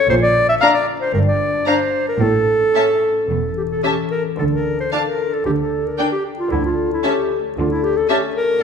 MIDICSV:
0, 0, Header, 1, 8, 480
1, 0, Start_track
1, 0, Tempo, 525394
1, 87, Time_signature, 4, 2, 24, 8
1, 1527, Tempo, 541028
1, 4887, Tempo, 526778
1, 7777, End_track
2, 0, Start_track
2, 0, Title_t, "Violin section"
2, 0, Program_c, 0, 48
2, 562, Note_on_c, 0, 82, 55
2, 635, Note_off_c, 0, 82, 0
2, 1520, Note_on_c, 0, 82, 46
2, 1592, Note_off_c, 0, 82, 0
2, 2486, Note_on_c, 0, 81, 45
2, 2557, Note_off_c, 0, 81, 0
2, 3461, Note_on_c, 0, 81, 36
2, 3532, Note_off_c, 0, 81, 0
2, 4411, Note_on_c, 0, 81, 44
2, 4482, Note_off_c, 0, 81, 0
2, 5366, Note_on_c, 0, 79, 35
2, 5439, Note_off_c, 0, 79, 0
2, 6327, Note_on_c, 0, 81, 46
2, 6400, Note_off_c, 0, 81, 0
2, 7285, Note_on_c, 0, 81, 42
2, 7357, Note_off_c, 0, 81, 0
2, 7777, End_track
3, 0, Start_track
3, 0, Title_t, "Violin section"
3, 0, Program_c, 1, 48
3, 560, Note_on_c, 1, 77, 51
3, 633, Note_off_c, 1, 77, 0
3, 1524, Note_on_c, 1, 77, 43
3, 1595, Note_off_c, 1, 77, 0
3, 2484, Note_on_c, 1, 76, 38
3, 2555, Note_off_c, 1, 76, 0
3, 3445, Note_on_c, 1, 76, 39
3, 3516, Note_off_c, 1, 76, 0
3, 4414, Note_on_c, 1, 77, 36
3, 4485, Note_off_c, 1, 77, 0
3, 5361, Note_on_c, 1, 74, 40
3, 5434, Note_off_c, 1, 74, 0
3, 6326, Note_on_c, 1, 76, 38
3, 6398, Note_off_c, 1, 76, 0
3, 7284, Note_on_c, 1, 76, 44
3, 7357, Note_off_c, 1, 76, 0
3, 7777, End_track
4, 0, Start_track
4, 0, Title_t, "Clarinet"
4, 0, Program_c, 2, 71
4, 87, Note_on_c, 2, 72, 77
4, 141, Note_off_c, 2, 72, 0
4, 205, Note_on_c, 2, 74, 88
4, 441, Note_off_c, 2, 74, 0
4, 450, Note_on_c, 2, 76, 76
4, 502, Note_off_c, 2, 76, 0
4, 556, Note_on_c, 2, 77, 75
4, 612, Note_off_c, 2, 77, 0
4, 679, Note_on_c, 2, 74, 69
4, 787, Note_off_c, 2, 74, 0
4, 923, Note_on_c, 2, 72, 69
4, 1033, Note_off_c, 2, 72, 0
4, 1038, Note_on_c, 2, 70, 67
4, 1093, Note_off_c, 2, 70, 0
4, 1159, Note_on_c, 2, 74, 68
4, 1517, Note_off_c, 2, 74, 0
4, 1526, Note_on_c, 2, 72, 69
4, 1875, Note_off_c, 2, 72, 0
4, 1891, Note_on_c, 2, 70, 69
4, 2009, Note_on_c, 2, 69, 78
4, 2022, Note_off_c, 2, 70, 0
4, 3206, Note_off_c, 2, 69, 0
4, 3211, Note_on_c, 2, 67, 52
4, 3265, Note_off_c, 2, 67, 0
4, 3336, Note_on_c, 2, 69, 54
4, 3441, Note_off_c, 2, 69, 0
4, 3447, Note_on_c, 2, 67, 51
4, 3556, Note_off_c, 2, 67, 0
4, 3692, Note_on_c, 2, 70, 65
4, 3801, Note_off_c, 2, 70, 0
4, 3936, Note_on_c, 2, 69, 56
4, 3989, Note_off_c, 2, 69, 0
4, 4056, Note_on_c, 2, 70, 60
4, 4289, Note_off_c, 2, 70, 0
4, 4304, Note_on_c, 2, 72, 58
4, 4407, Note_off_c, 2, 72, 0
4, 4412, Note_on_c, 2, 74, 53
4, 4466, Note_off_c, 2, 74, 0
4, 4534, Note_on_c, 2, 70, 55
4, 4776, Note_on_c, 2, 69, 49
4, 4790, Note_off_c, 2, 70, 0
4, 4883, Note_off_c, 2, 69, 0
4, 4888, Note_on_c, 2, 67, 61
4, 4942, Note_off_c, 2, 67, 0
4, 5016, Note_on_c, 2, 69, 54
4, 5254, Note_on_c, 2, 70, 53
4, 5268, Note_off_c, 2, 69, 0
4, 5484, Note_off_c, 2, 70, 0
4, 5489, Note_on_c, 2, 67, 60
4, 5598, Note_off_c, 2, 67, 0
4, 5736, Note_on_c, 2, 65, 59
4, 5847, Note_off_c, 2, 65, 0
4, 5852, Note_on_c, 2, 64, 65
4, 5969, Note_off_c, 2, 64, 0
4, 5977, Note_on_c, 2, 65, 59
4, 6209, Note_off_c, 2, 65, 0
4, 6225, Note_on_c, 2, 64, 60
4, 6338, Note_on_c, 2, 67, 58
4, 6352, Note_off_c, 2, 64, 0
4, 6648, Note_off_c, 2, 67, 0
4, 6820, Note_on_c, 2, 65, 59
4, 6927, Note_off_c, 2, 65, 0
4, 6942, Note_on_c, 2, 64, 60
4, 7055, Note_on_c, 2, 67, 66
4, 7068, Note_off_c, 2, 64, 0
4, 7178, Note_on_c, 2, 69, 53
4, 7192, Note_off_c, 2, 67, 0
4, 7282, Note_off_c, 2, 69, 0
4, 7287, Note_on_c, 2, 67, 60
4, 7395, Note_off_c, 2, 67, 0
4, 7528, Note_on_c, 2, 70, 85
4, 7776, Note_off_c, 2, 70, 0
4, 7777, End_track
5, 0, Start_track
5, 0, Title_t, "Harp"
5, 0, Program_c, 3, 46
5, 0, Note_on_c, 3, 50, 53
5, 0, Note_on_c, 3, 61, 41
5, 0, Note_on_c, 3, 64, 46
5, 0, Note_on_c, 3, 69, 46
5, 93, Note_on_c, 3, 46, 60
5, 111, Note_off_c, 3, 61, 0
5, 112, Note_off_c, 3, 50, 0
5, 112, Note_off_c, 3, 64, 0
5, 113, Note_off_c, 3, 69, 0
5, 254, Note_on_c, 3, 70, 48
5, 411, Note_on_c, 3, 62, 42
5, 559, Note_off_c, 3, 70, 0
5, 570, Note_on_c, 3, 70, 51
5, 728, Note_on_c, 3, 65, 44
5, 874, Note_off_c, 3, 62, 0
5, 885, Note_on_c, 3, 62, 41
5, 1045, Note_on_c, 3, 43, 56
5, 1065, Note_off_c, 3, 46, 0
5, 1193, Note_off_c, 3, 70, 0
5, 1204, Note_on_c, 3, 70, 41
5, 1361, Note_off_c, 3, 62, 0
5, 1372, Note_on_c, 3, 62, 43
5, 1517, Note_off_c, 3, 70, 0
5, 1528, Note_on_c, 3, 70, 41
5, 1675, Note_off_c, 3, 65, 0
5, 1686, Note_on_c, 3, 65, 37
5, 1832, Note_off_c, 3, 62, 0
5, 1842, Note_on_c, 3, 62, 32
5, 2003, Note_on_c, 3, 45, 44
5, 2022, Note_off_c, 3, 62, 0
5, 2022, Note_off_c, 3, 70, 0
5, 2023, Note_off_c, 3, 43, 0
5, 2023, Note_off_c, 3, 65, 0
5, 2166, Note_on_c, 3, 69, 37
5, 2328, Note_on_c, 3, 61, 35
5, 2477, Note_off_c, 3, 69, 0
5, 2652, Note_on_c, 3, 64, 34
5, 2802, Note_off_c, 3, 61, 0
5, 2813, Note_on_c, 3, 61, 35
5, 2975, Note_on_c, 3, 52, 34
5, 3133, Note_on_c, 3, 69, 37
5, 3286, Note_off_c, 3, 61, 0
5, 3296, Note_on_c, 3, 61, 33
5, 3442, Note_off_c, 3, 69, 0
5, 3453, Note_on_c, 3, 69, 36
5, 3603, Note_off_c, 3, 64, 0
5, 3614, Note_on_c, 3, 64, 35
5, 3767, Note_off_c, 3, 61, 0
5, 3778, Note_on_c, 3, 61, 30
5, 3938, Note_on_c, 3, 50, 43
5, 3952, Note_off_c, 3, 45, 0
5, 3953, Note_off_c, 3, 64, 0
5, 3954, Note_off_c, 3, 52, 0
5, 3954, Note_off_c, 3, 61, 0
5, 4089, Note_off_c, 3, 69, 0
5, 4099, Note_on_c, 3, 69, 37
5, 4254, Note_on_c, 3, 62, 31
5, 4405, Note_off_c, 3, 69, 0
5, 4415, Note_on_c, 3, 69, 39
5, 4576, Note_on_c, 3, 65, 36
5, 4723, Note_off_c, 3, 62, 0
5, 4733, Note_on_c, 3, 62, 35
5, 4881, Note_off_c, 3, 50, 0
5, 4892, Note_on_c, 3, 50, 43
5, 4908, Note_off_c, 3, 69, 0
5, 4909, Note_off_c, 3, 65, 0
5, 5054, Note_on_c, 3, 70, 34
5, 5203, Note_off_c, 3, 62, 0
5, 5214, Note_on_c, 3, 62, 37
5, 5359, Note_off_c, 3, 70, 0
5, 5370, Note_on_c, 3, 70, 38
5, 5532, Note_on_c, 3, 67, 38
5, 5678, Note_off_c, 3, 62, 0
5, 5689, Note_on_c, 3, 62, 36
5, 5837, Note_off_c, 3, 50, 0
5, 5848, Note_on_c, 3, 50, 45
5, 5869, Note_off_c, 3, 62, 0
5, 5870, Note_off_c, 3, 67, 0
5, 5870, Note_off_c, 3, 70, 0
5, 6010, Note_on_c, 3, 69, 40
5, 6171, Note_on_c, 3, 61, 33
5, 6320, Note_off_c, 3, 69, 0
5, 6331, Note_on_c, 3, 69, 43
5, 6481, Note_off_c, 3, 61, 0
5, 6492, Note_on_c, 3, 61, 37
5, 6652, Note_on_c, 3, 57, 43
5, 6800, Note_off_c, 3, 50, 0
5, 6811, Note_on_c, 3, 50, 48
5, 6963, Note_off_c, 3, 69, 0
5, 6974, Note_on_c, 3, 69, 46
5, 7122, Note_off_c, 3, 61, 0
5, 7133, Note_on_c, 3, 61, 41
5, 7282, Note_off_c, 3, 69, 0
5, 7442, Note_off_c, 3, 61, 0
5, 7453, Note_on_c, 3, 61, 47
5, 7599, Note_off_c, 3, 57, 0
5, 7610, Note_on_c, 3, 57, 41
5, 7777, Note_off_c, 3, 50, 0
5, 7777, Note_off_c, 3, 57, 0
5, 7777, Note_off_c, 3, 61, 0
5, 7777, End_track
6, 0, Start_track
6, 0, Title_t, "Viola section"
6, 0, Program_c, 4, 48
6, 569, Note_on_c, 4, 62, 56
6, 642, Note_off_c, 4, 62, 0
6, 1518, Note_on_c, 4, 62, 48
6, 1589, Note_off_c, 4, 62, 0
6, 2486, Note_on_c, 4, 61, 36
6, 2557, Note_off_c, 4, 61, 0
6, 3445, Note_on_c, 4, 61, 36
6, 3516, Note_off_c, 4, 61, 0
6, 4411, Note_on_c, 4, 62, 41
6, 4482, Note_off_c, 4, 62, 0
6, 5373, Note_on_c, 4, 62, 41
6, 5446, Note_off_c, 4, 62, 0
6, 6329, Note_on_c, 4, 61, 46
6, 6402, Note_off_c, 4, 61, 0
6, 7290, Note_on_c, 4, 61, 47
6, 7363, Note_off_c, 4, 61, 0
6, 7777, End_track
7, 0, Start_track
7, 0, Title_t, "Cello section"
7, 0, Program_c, 5, 48
7, 88, Note_on_c, 5, 46, 73
7, 466, Note_off_c, 5, 46, 0
7, 1036, Note_on_c, 5, 43, 62
7, 1421, Note_off_c, 5, 43, 0
7, 1997, Note_on_c, 5, 45, 59
7, 2382, Note_off_c, 5, 45, 0
7, 2968, Note_on_c, 5, 40, 51
7, 3349, Note_off_c, 5, 40, 0
7, 3932, Note_on_c, 5, 50, 50
7, 4311, Note_off_c, 5, 50, 0
7, 4887, Note_on_c, 5, 50, 52
7, 5269, Note_off_c, 5, 50, 0
7, 5848, Note_on_c, 5, 50, 61
7, 6229, Note_off_c, 5, 50, 0
7, 6809, Note_on_c, 5, 50, 59
7, 7188, Note_off_c, 5, 50, 0
7, 7777, End_track
8, 0, Start_track
8, 0, Title_t, "Double bass section"
8, 0, Program_c, 6, 48
8, 87, Note_on_c, 6, 34, 71
8, 466, Note_off_c, 6, 34, 0
8, 1040, Note_on_c, 6, 31, 55
8, 1423, Note_off_c, 6, 31, 0
8, 1995, Note_on_c, 6, 33, 58
8, 2381, Note_off_c, 6, 33, 0
8, 2965, Note_on_c, 6, 28, 45
8, 3348, Note_off_c, 6, 28, 0
8, 3928, Note_on_c, 6, 38, 54
8, 4309, Note_off_c, 6, 38, 0
8, 4884, Note_on_c, 6, 38, 47
8, 5267, Note_off_c, 6, 38, 0
8, 5840, Note_on_c, 6, 38, 62
8, 6225, Note_off_c, 6, 38, 0
8, 6801, Note_on_c, 6, 38, 57
8, 7183, Note_off_c, 6, 38, 0
8, 7777, End_track
0, 0, End_of_file